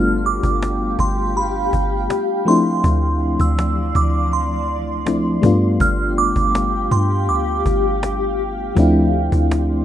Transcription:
Already playing: 808-style bass G1, fm electric piano G3 A3 B3 D4 F4, ambient pad G4 F5 G5, synth bell F6
0.24 synth bell D6, cajon slap
0.43 808-style bass G1, cajon bass
0.62 cajon slap
0.99 808-style bass G1, synth bell C6, cajon bass
1.08 cajon slap
1.17 cajon slap
1.27 cajon slap
1.35 synth bell B5, cajon slap
1.73 808-style bass G1, cajon bass
2.10 cajon slap
2.45 fm electric piano F3 A3 C4 D4, ambient pad F3 D5 C6, synth bell C6, cajon slap
2.50 fm electric piano E4
2.84 808-style bass D2, cajon bass
3.21 cajon slap
3.40 808-style bass D2, synth bell E6, cajon bass
3.59 cajon slap
3.95 808-style bass D2, synth bell D6, cajon bass
4.13 cajon slap
4.23 cajon slap
4.31 synth bell C6, cajon slap
4.69 cajon slap
5.06 fm electric piano F3 A3 C4 D4 E4, cajon slap
5.42 808-style bass G2, fm electric piano G3 A3 B3 D4, ambient pad G4 F5 G5, cajon bass
5.46 fm electric piano F4
5.80 808-style bass G1, synth bell F6, cajon bass
6.17 synth bell D6, cajon slap
6.36 808-style bass G1, cajon bass
6.55 cajon slap
6.91 808-style bass G2, synth bell C6, cajon bass
7.04 cajon slap
7.16 cajon slap
7.27 808-style bass D2, synth bell D6, cajon slap
7.66 808-style bass G1, cajon bass
8.03 cajon slap
8.39 cajon slap
8.75 808-style bass D2, fm electric piano F3 A3 C4 D4, ambient pad F3 D5 C6, cajon bass
8.80 fm electric piano E4
9.13 cajon slap
9.32 808-style bass D2, cajon bass
9.51 cajon slap

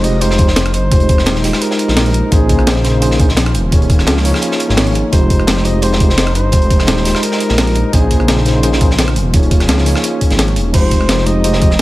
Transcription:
Already playing: detuned saw bass F1, analog synth pad D#4
0.03 tine electric piano G#3 D#4 F4 G4 C5, flugelhorn D#5, closed hi-hat
0.20 tine electric piano G#3 D#4 F4 G4 C5, flugelhorn C5, closed hi-hat
0.31 snare
0.38 tine electric piano G#3 D#4 F4 G4 C5, kick, closed hi-hat
0.48 snare
0.56 snare, closed hi-hat
0.66 cross-stick, closed hi-hat
0.74 detuned saw bass G1, flugelhorn C5, closed hi-hat
0.90 detuned saw bass F1, tine electric piano G#3 D#4 F4 G4 C5, kick, closed hi-hat
1.00 closed hi-hat
1.09 kick, closed hi-hat
1.18 cross-stick, snare
1.26 detuned saw bass D#1, snare, closed hi-hat
1.35 snare
1.43 tine electric piano G#3 D#4 F4 G4 C5, snare, closed hi-hat, open hi-hat
1.53 cross-stick, snare
1.62 flugelhorn A#4, closed hi-hat
1.71 snare
1.79 closed hi-hat
1.88 detuned saw bass A#1, snare
1.97 snare, closed hi-hat, open hi-hat
2.06 closed hi-hat
2.14 closed hi-hat
2.30 detuned saw bass A#1, analog synth pad C#3 C5, tine electric piano A#3 C#4 D#4 G#4 C5, flugelhorn G#4, kick, closed hi-hat
2.49 kick, closed hi-hat
2.59 cross-stick
2.67 snare, closed hi-hat
2.76 snare
2.84 tine electric piano A#3 C#4 D#4 G#4 C5, snare, closed hi-hat
3.01 tine electric piano A#3 C#4 D#4 G#4 C5, closed hi-hat
3.11 snare
3.19 tine electric piano A#3 C#4 D#4 G#4 C5, kick, closed hi-hat
3.29 snare
3.37 snare, closed hi-hat
3.46 cross-stick, closed hi-hat
3.54 detuned saw bass D#1, analog synth pad F3 C#4, closed hi-hat
3.71 detuned saw bass D#1, tine electric piano A#3 D#4 F4 G#4 C#5, kick, closed hi-hat
3.82 closed hi-hat
3.90 kick, closed hi-hat
3.99 cross-stick, snare
4.07 detuned saw bass C#2, snare, closed hi-hat
4.17 snare
4.24 tine electric piano A#3 D#4 F4 G#4 C#5, closed hi-hat, open hi-hat
4.34 cross-stick, snare
4.42 closed hi-hat
4.52 snare
4.60 closed hi-hat
4.68 detuned saw bass G#1, tine electric piano A#3 D#4 F4 G#4 C#5, snare
4.77 snare, closed hi-hat, open hi-hat
4.87 closed hi-hat
4.95 closed hi-hat
5.11 detuned saw bass F1, tine electric piano G#3 D#4 F4 G4 C5, analog synth pad D#4, flugelhorn C5, kick, closed hi-hat
5.30 kick, closed hi-hat
5.40 cross-stick
5.47 snare, closed hi-hat
5.57 snare
5.64 tine electric piano G#3 D#4 F4 G4 C5, flugelhorn D#5, closed hi-hat
5.82 tine electric piano G#3 D#4 F4 G4 C5, flugelhorn C5, closed hi-hat
5.93 snare
5.99 tine electric piano G#3 D#4 F4 G4 C5, kick, closed hi-hat
6.10 snare
6.18 snare, closed hi-hat
6.27 cross-stick, closed hi-hat
6.35 detuned saw bass G1, flugelhorn C5, closed hi-hat
6.51 detuned saw bass F1, tine electric piano G#3 D#4 F4 G4 C5, kick, closed hi-hat
6.62 closed hi-hat
6.70 kick, closed hi-hat
6.79 cross-stick, snare
6.87 detuned saw bass D#1, snare, closed hi-hat
6.97 snare
7.04 tine electric piano G#3 D#4 F4 G4 C5, snare, closed hi-hat, open hi-hat
7.15 cross-stick, snare
7.23 flugelhorn A#4, closed hi-hat
7.32 snare
7.40 closed hi-hat
7.49 detuned saw bass A#1, snare
7.58 snare, closed hi-hat, open hi-hat
7.67 closed hi-hat
7.75 closed hi-hat
7.92 detuned saw bass A#1, analog synth pad C#3 C5, tine electric piano A#3 C#4 D#4 G#4 C5, flugelhorn G#4, kick, closed hi-hat
8.11 kick, closed hi-hat
8.20 cross-stick
8.28 snare, closed hi-hat
8.37 snare
8.45 tine electric piano A#3 C#4 D#4 G#4 C5, snare, closed hi-hat
8.63 tine electric piano A#3 C#4 D#4 G#4 C5, closed hi-hat
8.73 snare
8.80 tine electric piano A#3 C#4 D#4 G#4 C5, kick, closed hi-hat
8.91 snare
8.99 snare, closed hi-hat
9.08 cross-stick, closed hi-hat
9.16 detuned saw bass D#1, analog synth pad F3 C#4, closed hi-hat
9.32 detuned saw bass D#1, tine electric piano A#3 D#4 F4 G#4 C#5, kick, closed hi-hat
9.43 closed hi-hat
9.51 kick, closed hi-hat
9.60 cross-stick, snare, closed hi-hat
9.69 detuned saw bass C#2, snare, closed hi-hat
9.78 snare
9.85 tine electric piano A#3 D#4 F4 G#4 C#5, closed hi-hat, open hi-hat
9.95 cross-stick, snare
10.04 closed hi-hat
10.21 kick, closed hi-hat
10.30 detuned saw bass G#1, snare, closed hi-hat
10.39 snare, closed hi-hat
10.48 closed hi-hat
10.56 detuned saw bass D#1, closed hi-hat
10.72 detuned saw bass F1, tine electric piano G#3 D#4 F4 G4 C5, analog synth pad D#4, flugelhorn C5, kick, closed hi-hat, crash
10.91 kick, closed hi-hat
11.01 cross-stick
11.09 snare, closed hi-hat
11.18 snare
11.26 tine electric piano G#3 D#4 F4 G4 C5, flugelhorn D#5, closed hi-hat
11.43 tine electric piano G#3 D#4 F4 G4 C5, closed hi-hat
11.53 snare
11.61 tine electric piano G#3 D#4 F4 G4 C5, kick, closed hi-hat
11.71 snare

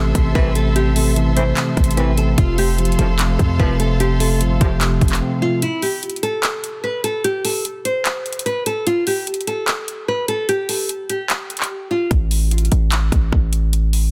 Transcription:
Already playing: 808-style bass A1, tine electric piano C3 E3 A3, nylon-string guitar A4, string section A4 C5 E5 C6
0.15 808-style bass A1, kick, closed hi-hat
0.35 808-style bass A1, brass ensemble C2 A2 E3, tine electric piano C4, nylon-string guitar B4, kick
0.55 tine electric piano A3, nylon-string guitar A4, closed hi-hat
0.76 tine electric piano C3, nylon-string guitar G4, closed hi-hat
0.96 tine electric piano A3, nylon-string guitar A4, open hi-hat
1.16 tine electric piano E3, closed hi-hat
1.36 brass ensemble C2 A2 E3, tine electric piano A3, nylon-string guitar C5, closed hi-hat
1.57 tine electric piano C3, clap, closed hi-hat
1.77 808-style bass A1, kick, closed hi-hat
1.84 closed hi-hat
1.91 closed hi-hat
1.97 brass ensemble C2 A2 E3, tine electric piano C4, nylon-string guitar B4, closed hi-hat
2.17 tine electric piano A3, nylon-string guitar A4, closed hi-hat
2.38 808-style bass F1, tine electric piano C3, nylon-string guitar F4, string section A4 C5 F5 C6, kick, closed hi-hat
2.58 tine electric piano A3, nylon-string guitar G4, open hi-hat
2.78 tine electric piano F3, closed hi-hat
2.85 closed hi-hat
2.92 closed hi-hat
2.99 808-style bass F1, brass ensemble C2 A2 F3, tine electric piano A3, nylon-string guitar A4, closed hi-hat
3.19 tine electric piano C3, clap, closed hi-hat
3.39 808-style bass F2, kick, closed hi-hat
3.60 808-style bass F1, brass ensemble C2 A2 F3, tine electric piano C4, nylon-string guitar B4, kick
3.80 tine electric piano A3, nylon-string guitar A4, closed hi-hat
4.00 tine electric piano C3, nylon-string guitar G4, closed hi-hat
4.20 tine electric piano A3, nylon-string guitar A4, open hi-hat
4.41 808-style bass G1, tine electric piano F3, closed hi-hat
4.61 808-style bass F1, brass ensemble C2 A2 F3, tine electric piano A3, nylon-string guitar G4, kick, closed hi-hat
4.81 tine electric piano C3, clap, closed hi-hat
5.01 808-style bass F1, kick, closed hi-hat
5.08 clap, closed hi-hat
5.15 closed hi-hat
5.22 tine electric piano C4
5.42 tine electric piano A3, nylon-string guitar F4
5.62 nylon-string guitar E4, closed hi-hat
5.82 nylon-string guitar G4, open hi-hat
6.03 closed hi-hat
6.10 closed hi-hat
6.16 closed hi-hat
6.23 nylon-string guitar A4, closed hi-hat
6.43 clap, closed hi-hat
6.64 closed hi-hat
6.84 nylon-string guitar B4
7.04 nylon-string guitar A4, closed hi-hat
7.24 nylon-string guitar G4, closed hi-hat
7.45 nylon-string guitar A4, open hi-hat
7.65 closed hi-hat
7.85 nylon-string guitar C5, closed hi-hat
8.05 clap, closed hi-hat
8.26 closed hi-hat
8.33 closed hi-hat
8.39 closed hi-hat
8.46 nylon-string guitar B4, closed hi-hat
8.66 nylon-string guitar A4, closed hi-hat
8.87 nylon-string guitar F4, closed hi-hat
9.07 nylon-string guitar G4, open hi-hat
9.27 closed hi-hat
9.34 closed hi-hat
9.41 closed hi-hat
9.47 nylon-string guitar A4, closed hi-hat
9.68 clap, closed hi-hat
9.88 closed hi-hat
10.08 nylon-string guitar B4
10.28 nylon-string guitar A4, closed hi-hat
10.49 nylon-string guitar G4, closed hi-hat
10.69 nylon-string guitar A4, open hi-hat
10.89 closed hi-hat
11.10 nylon-string guitar G4, closed hi-hat
11.30 clap, closed hi-hat
11.50 closed hi-hat
11.57 clap, closed hi-hat
11.64 closed hi-hat
11.91 nylon-string guitar F4
12.11 808-style bass A1, kick, closed hi-hat
12.31 open hi-hat
12.51 closed hi-hat
12.58 closed hi-hat
12.65 closed hi-hat
12.72 808-style bass A1, closed hi-hat
12.92 clap, closed hi-hat
13.12 808-style bass A1, kick, closed hi-hat
13.32 808-style bass A1, kick
13.53 closed hi-hat
13.73 closed hi-hat
13.93 open hi-hat

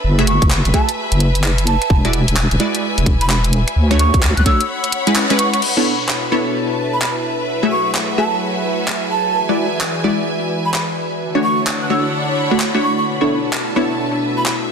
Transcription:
Already playing: string section B4 E5
0.04 wobble bass F#1
0.19 synth stab A3 F#4 G#4 E5, finger snap, closed hi-hat
0.27 flute C#6, closed hi-hat
0.42 wobble bass F#1, kick, closed hi-hat
0.51 clap
0.57 string section G#5
0.65 wobble bass F#1, closed hi-hat
0.74 synth stab A3 F#4 G#4 E5, flute A5, kick, closed hi-hat
0.89 closed hi-hat
1.12 wobble bass F#1, closed hi-hat
1.20 closed hi-hat
1.35 closed hi-hat
1.44 clap
1.58 closed hi-hat
1.67 flute A5, closed hi-hat
1.82 finger snap, closed hi-hat
1.90 wobble bass E1, kick
2.05 synth stab G#3 E4 F#4 D5, finger snap, closed hi-hat
2.13 closed hi-hat
2.28 wobble bass E1, closed hi-hat
2.37 clap
2.51 wobble bass E1, closed hi-hat
2.60 synth stab G#3 E4 F#4 D5, closed hi-hat
2.75 closed hi-hat
2.98 wobble bass E1, closed hi-hat
3.06 kick, closed hi-hat
3.21 flute B5, closed hi-hat
3.30 flute B5, clap
3.44 closed hi-hat
3.53 closed hi-hat
3.68 finger snap, closed hi-hat
3.76 wobble bass D2, string section C#5
3.91 synth stab A3 D4 F#4 C#5, finger snap, closed hi-hat
3.99 flute C#6, closed hi-hat
4.04 string section F#5
4.14 wobble bass D2, string section B5, kick, closed hi-hat
4.23 clap
4.37 wobble bass D2, flute F#6, closed hi-hat
4.46 synth stab A3 D4 F#4 C#5, flute E6, kick, closed hi-hat
4.61 closed hi-hat
4.84 closed hi-hat
4.92 closed hi-hat
5.07 synth stab G#3 C#4 E4 B4, closed hi-hat
5.16 clap
5.30 synth stab G#3 C#4 E4 B4, closed hi-hat
5.39 flute C#6, closed hi-hat
5.53 flute C#6, finger snap, closed hi-hat
5.62 analog synth pad B2 D4 E4 F#4 A4 C#5, string section B4, crash
5.77 synth stab B3 D4 E4 A4 C#5
6.09 clap
6.14 string section E5
6.32 synth stab B3 D4 E4 A4 C#5
6.44 string section A5
6.93 flute B5
7.02 flute B5, clap
7.48 analog synth pad F#3 A3 G#4, string section F#4
7.63 synth stab A3 F#4 G#4 E5
7.72 flute C#6
7.95 clap
8.18 synth stab A3 F#4 G#4 E5, flute A5
8.34 string section G#5
8.88 clap
9.11 flute A5
9.34 analog synth pad E3 F#4 B4 D5
9.49 synth stab G#3 E4 F#4 D5
9.81 clap
10.04 synth stab G#3 E4 F#4 D5
10.65 flute B5
10.74 flute B5, clap
11.20 analog synth pad D3 A3 E4 F#4 C#5, string section D4
11.32 synth stab A3 D4 F#4 C#5, string section C#5 F#5
11.44 flute C#6
11.67 clap
11.81 string section B5, flute F#6
11.90 synth stab A3 D4 F#4 C#5, flute E6
12.51 synth stab A3 D4 F#4 C#5
12.60 clap
12.74 synth stab A3 D4 F#4 C#5
12.83 flute C#6
12.98 flute C#6
13.06 analog synth pad B2 D4 F#4, string section B4
13.21 synth stab B3 D4 E4 A4 C#5, string section A5
13.47 string section E5
13.53 clap
13.76 synth stab B3 D4 E4 A4 C#5
14.37 flute B5
14.46 flute B5, clap

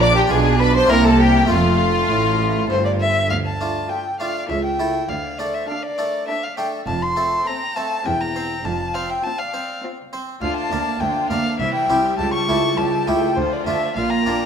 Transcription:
Already playing: double bass section A#1, cello section A#2, harpsichord A#2 D4 F4, viola section D4
0.01 violin D5, violin section D5 D6
0.15 violin G4, violin section G4 G5
0.27 double bass section B1, harpsichord B2 D4 F4, cello section B2, viola section D4, violin G#4, violin section G#4 G#5
0.60 violin B4, violin section B4 B5
0.75 violin C5, violin section C5 C6
0.86 double bass section C2, harpsichord A#3 C4 E4, violin A#4
0.90 harpsichord C3, cello section C3, viola section A#3, violin section A#4 A#5
1.04 violin A4, violin section A4 A5
1.19 violin G4, violin section G4 G5
1.46 double bass section F1, harpsichord A3 C4 F4, viola section A3, violin F4
1.50 harpsichord F2, cello section F2, violin section F4 F5
2.10 double bass section A1, harpsichord A2, cello section A2
2.70 double bass section G1, harpsichord G2, cello section G2, violin section A4, violin C5
2.85 violin section A#4, violin D5
3.00 violin section C5, violin E5
3.30 double bass section D2, cello section D2, harpsichord D2, violin section D5, violin F5
3.45 violin section F5, violin A5
3.61 harpsichord A3 D4 F4
3.90 viola section F4, violin section A4 E5, violin G5
4.19 harpsichord A3 D4 F4, violin section D5, violin F5
4.49 cello section C#2, double bass section C#2, harpsichord C#2, viola section E4, violin section A4 C#5, violin E5
4.64 violin section E5, violin G5
4.79 harpsichord A3 E4 A4
5.08 double bass section D2, harpsichord D2, cello section D2, violin section D5, violin F5
5.38 harpsichord A3 D4 A4, violin section A#4, violin D5
5.54 violin section C5, violin E5
5.68 viola section D4, violin section A4 D5, violin F5
5.83 violin section A#4, violin D5
5.98 harpsichord A3 D4 A4
6.28 viola section D4, violin section A4 C5, violin E5
6.43 violin section D5, violin F5
6.57 harpsichord A3 D4 A4, violin section E5, violin G5
6.86 double bass section F1, cello section F2, harpsichord F2, violin section F5, violin A5
7.01 violin section A5, violin C6
7.17 harpsichord A3 C4 A4
7.46 viola section C4, violin section A4 G5, violin A#5
7.76 harpsichord A3 C4 A4, violin section F5, violin A5
8.06 double bass section E1, harpsichord E2, cello section E2, viola section C4, violin section G4 E5, violin G5
8.20 violin section G5, violin A#5
8.36 harpsichord C4 C5
8.65 double bass section F1, cello section F2, harpsichord F2, violin section F5, violin A5
8.94 harpsichord C4 C5, violin section D5, violin F5
9.09 violin section E5, violin G5
9.23 viola section C4, violin section F4 F5, violin A5
9.38 violin section D5, violin F5
9.54 harpsichord C4 C5
9.83 viola section C4, violin section F4
10.13 harpsichord C4 C5
10.41 harpsichord D2, cello section D2, double bass section D2, viola section D4, violin section F4 D5, violin F5
10.56 violin section F5, violin A5
10.71 double bass section D2, cello section D2, harpsichord D2 D4 A#4, viola section A#3, violin section D4
11.00 double bass section D2, cello section D2, harpsichord D2, viola section D4, violin section F4 E5, violin G5
11.29 cello section D2, double bass section D2, harpsichord D2 D4 A#4, viola section A#3, violin section D4 D5, violin F5
11.59 cello section C2, double bass section C2, harpsichord C2, viola section E3, violin section E4 C5, violin E5
11.74 violin section E5, violin G5
11.89 cello section C2, double bass section C2, harpsichord C2 C4 E4 G4, viola section G3, violin section G4
12.18 double bass section C#2, cello section C#2, harpsichord C#2, viola section G3, violin section G4 E5, violin A5
12.33 violin section A5, violin C#6
12.48 double bass section C#2, cello section C#2, harpsichord C#2 A3 E4 G4, viola section A3, violin section A4
12.77 cello section C#2, double bass section C#2, harpsichord C#2, viola section G3, violin section G4 E5, violin A5
13.07 double bass section C#2, cello section C#2, harpsichord C#2 A3 E4 G4, viola section A3, violin section A4 E5, violin G5
13.36 double bass section D2, cello section D2, harpsichord D2, viola section F3, violin section F4 A4, violin C5
13.52 violin section A#4, violin D5
13.66 double bass section D2, harpsichord D2 A3 D4 F4, cello section D2, viola section A3, violin section D4 C5, violin E5
13.96 double bass section A#1, cello section A#2, harpsichord A#2, viola section A#3, violin section F4 D5, violin F5
14.10 violin section G5, violin A#5
14.25 double bass section A#1, cello section A#2, harpsichord A#2 A#3 D4 F4, viola section D4, violin section A#4

